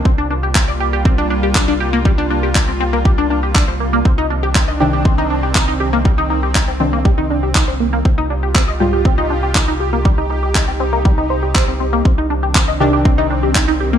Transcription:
<<
  \new Staff \with { instrumentName = "Synth arpeggio sound" } { \time 4/4 \key c \minor \tempo 4 = 120 c'16 d'16 d'16 g'16 c'16 d''16 g'16 g'16 c'16 d'16 d'16 g'16 d'16 d'16 g'16 bes16 | g16 d'16 d'16 g'16 d'16 c'16 c'16 bes16 g'16 d'16 d'16 g'16 d'16 c''16 bes16 bes16 | c'16 ees'16 d'16 g'16 c'16 ees''16 g'16 g'16 c'16 ees'16 d'16 g'16 ees'16 ees'16 g'16 bes16 | g16 ees'16 ees'16 g'16 ees'16 c'16 c'16 bes16 g16 ees'16 d'16 g'16 ees'16 c''16 bes16 bes16 |
c'16 ees'16 d'16 g'16 c'16 ees''16 g'16 g'16 c'16 ees'16 d'16 g'16 ees'16 ees'16 g'16 bes16 | g16 ees'16 ees'16 g'16 ees'16 c'16 c'16 bes16 g16 ees'16 c''16 g'16 c''16 c'16 c'16 bes16 | c'16 ees'16 d'16 g'16 c'16 ees''16 g'16 g'16 c'16 ees'16 d'16 g'16 ees'16 ees'16 g'16 bes16 | }
  \new Staff \with { instrumentName = "Analog synth pad" } { \time 4/4 \key c \minor << { f'1~ | f'1 | d'1 | r1 |
g'1~ | g'1 | d'1 | } \\ { <g bes>1~ | <g bes>1 | <ees c'>1~ | <ees c'>1 |
f'1 | ees'1 | <ees c'>1 | } >> }
  \new Staff \with { instrumentName = "Synth stab" } { \clef bass \time 4/4 \key c \minor r1 | r1 | r4. <c ees d'>2~ <c ees d'>8~ | <c ees d'>4. <c ees d'>2~ <c ees d'>8 |
r4. <aes, g f'>2~ <aes, g f'>8~ | <aes, g f'>4. r2 r8 | r4. <c ees d'>2~ <c ees d'>8 | }
  \new Staff \with { instrumentName = "Analog synth bass" } { \clef bass \time 4/4 \key c \minor c,1~ | c,1 | c,1~ | c,1 |
c,1~ | c,1 | c,1 | }
  \new DrumStaff \with { instrumentName = "Drums" } \drummode { \time 4/4 bd4 <hc bd>4 bd4 <hc bd>4 | bd4 <hc bd>4 bd4 <hc bd>4 | bd4 <hc bd>4 bd4 <hc bd>4 | bd4 <hc bd>4 bd4 <hc bd>4 |
bd4 <hc bd>4 bd4 <hc bd>4 | bd4 <hc bd>4 bd4 <hc bd>4 | bd4 <hc bd>4 bd4 <hc bd>4 | }
>>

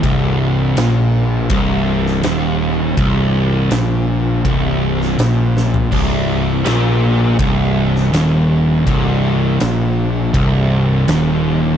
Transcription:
<<
  \new Staff \with { instrumentName = "Distorted electric guitar" } { \clef bass \time 4/4 \key c \minor \tempo 4 = 82 c,4 bes,4 c,4 ees,4 | c,4 bes,4 c,4 bes,4 | c,4 bes,4 c,4 ees,4 | c,4 bes,4 c,4 ees,4 | }
  \new Staff \with { instrumentName = "Picked electric bass" } { \clef bass \time 4/4 \key c \minor c,,4 bes,,4 c,,4 ees,,4 | c,,4 bes,,4 c,,4 bes,,4 | c,,4 bes,,4 c,,4 ees,,4 | c,,4 bes,,4 c,,4 ees,,4 | }
  \new DrumStaff \with { instrumentName = "Drums" } \drummode { \time 4/4 <bd rb>4 <rb sn>4 <bd rb>8. sn16 <rb sn>4 | <bd rb>4 <rb sn>4 <bd rb>8. sn16 <rb sn>8 sn16 tomfh16 | <cymc bd>4 <rb sn>4 <bd rb>8. sn16 <rb sn>4 | <bd rb>4 <rb sn>4 <bd rb>4 <rb sn>4 | }
>>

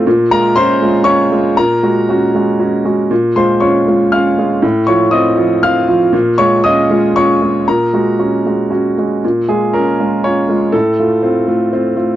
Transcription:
\new Staff \with { instrumentName = "Grand piano" } { \time 3/4 \key bes \minor \tempo 4 = 119 << { r8 <bes' bes''>8 <c'' c'''>4 <des'' des'''>4 | <bes' bes''>2~ <bes' bes''>8 r8 | r8 <c'' c'''>8 <des'' des'''>4 <f'' f'''>4 | r8 <des'' des'''>8 <ees'' ees'''>4 <f'' f'''>4 |
r8 <des'' des'''>8 <ees'' ees'''>4 <des'' des'''>4 | <bes' bes''>2 r4 | r8 aes'8 bes'4 des''4 | a'2~ a'8 r8 | } \\ { bes,8 <aes f'>8 <des' f'>8 <aes f'>8 <des' f'>8 <aes f'>8 | bes,8 <aes ges'>8 <des' ges'>8 <aes ges'>8 <des' ges'>8 <aes ges'>8 | bes,8 <aes f'>8 <des' f'>8 <aes f'>8 <des' f'>8 <aes f'>8 | a,8 <f f'>8 <c' f'>8 <f f'>8 <c' f'>8 <f f'>8 |
bes,8 <aes f'>8 <des' f'>8 <aes f'>8 <des' f'>8 <aes f'>8 | bes,8 <aes ges'>8 <des' ges'>8 <aes ges'>8 <des' ges'>8 <aes ges'>8 | bes,8 <aes f'>8 <des' f'>8 <aes f'>8 <des' f'>8 <aes f'>8 | a,8 <a f'>8 <c' f'>8 <a f'>8 <c' f'>8 <a f'>8 | } >> }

